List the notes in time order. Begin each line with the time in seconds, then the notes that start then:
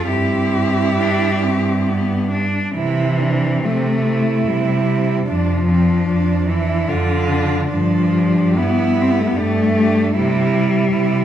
0.07 G2 C4 E4 G4
0.99 D4
1.43 C4
1.87 B3
2.31 D4
2.75 C3 E3 E4
3.20 C4 D4
3.64 C3 A3 C4
4.06 C4 E4
4.48 C3 G3
4.88 C4
5.27 F2 F3 D4
5.68 C4 D4
6.08 F2 D4
6.47 E3 D4 E4
6.88 F2 D3 F4
7.31 D4
7.69 G2 F3 D4
8.12 G4
8.57 G2 B3 E4
8.97 G4
9.02 C4
9.11 B3
9.19 A3
9.27 B3
9.36 G2 A3 D4
9.75 G4
10.13 C3 G3 E4
10.52 E4
10.91 C3 E4